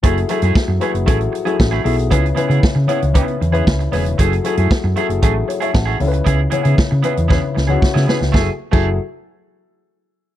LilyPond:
<<
  \new Staff \with { instrumentName = "Clean electric guitar" } { \time 4/4 \key fis \minor \tempo 4 = 116 <a e' gis'>16 r16 <a e' gis'>16 <a e' gis'>16 r8 <a e' gis'>16 r16 <a e' gis'>16 r8 <a e' gis'>16 r16 <a e' gis'>16 <a e' gis'>16 r16 | <b e' gis'>16 r16 <b e' gis'>16 <b e' gis'>16 r8 <b e' gis'>16 r16 <b e' gis'>8 r16 <b e' gis'>16 r8 <b e' gis'>16 r16 | <a e' gis'>16 r16 <a e' gis'>16 <a e' gis'>16 r8 <a e' gis'>16 r16 <a e' gis'>16 r8 <a e' gis'>16 r16 <a e' gis'>16 r8 | <b e' gis'>16 r16 <b e' gis'>16 <b e' gis'>16 r8 <b e' gis'>16 r16 <b e' gis'>16 r8 <b e' gis'>16 r16 <b e' gis'>16 <b e' gis'>16 r16 |
<a e' gis'>16 r8 <a e' gis'>16 r2. | }
  \new Staff \with { instrumentName = "Grand piano" } { \time 4/4 \key fis \minor << { r1 | r1 | r2 r8 <a' cis''>16 <cis'' e''>16 <fis'' a''>16 fis''8 r16 | r1 |
r1 | } \\ { <fis e' gis' a'>8 <fis e' gis' a'>8. r16 <fis e' gis' b'>8 <fis e' gis' a'>8 r16 <fis e' gis' a'>8 r16 <fis e' gis' a'>8 | <cis cis' e' b'>8 <cis cis' e' b'>8. r16 <cis cis' e' cis''>8 <cis cis' e' b'>8 r16 <cis cis' e' b'>8 r16 <cis cis' e' b'>8 | <fis e' gis' a'>8 <fis e' gis' a'>8. r16 <fis e' gis' a'>8 <fis e' gis' a'>8 r4 <cis cis' e' a' b'>8~ | <cis cis' e' a' b'>16 r16 <cis cis' e' cis''>8. r16 <cis cis' e' b'>8 <cis cis' e' b'>8 r16 <cis cis' e' fis'>8 r16 <cis cis' e' b'>8 |
<fis e' gis' a'>16 r8 <fis e' gis' a'>8 r2 r8. | } >> }
  \new Staff \with { instrumentName = "Fingered electric bass" } { \clef bass \time 4/4 \key fis \minor fis,,8 r16 fis,16 r16 fis,16 r16 fis,,16 a,,8 r8 a,,8 b,,8 | cis,8 r16 cis16 r16 cis16 r16 cis,8 r16 e,8 cis,8 e,,8 | fis,,8 r16 fis,16 r16 fis,16 r16 fis,,16 a,,8 r8 a,,8 cis,8 | cis,8 r16 cis16 r16 cis16 r16 e,8 r16 cis,8 r16 cis16 r16 cis,16 |
fis,,16 r8 fis,,8 r2 r8. | }
  \new DrumStaff \with { instrumentName = "Drums" } \drummode { \time 4/4 <hh bd>16 hh16 hh16 hh16 <bd sn>8 hh16 hh16 <hh bd>16 hh16 hh16 hh16 <bd sn>8 hho16 hh16 | <hh bd>16 hh16 hh16 hh16 <bd sn>8 hh16 hh16 <hh bd>16 hh16 hh16 hh16 <bd sn>16 hh16 <hho sn>16 hh16 | <hh bd>16 hh16 hh16 hh16 <bd sn>8 hh16 hh16 <hh bd>8 hh16 hh16 <bd sn>8 hho16 hh16 | <hh bd>8 hh16 hh16 <bd sn>8 hh16 hh16 <bd sn>8 sn8 <bd sn>16 sn16 sn16 sn16 |
<bd sn>8. <cymc bd>16 r4 r4 r4 | }
>>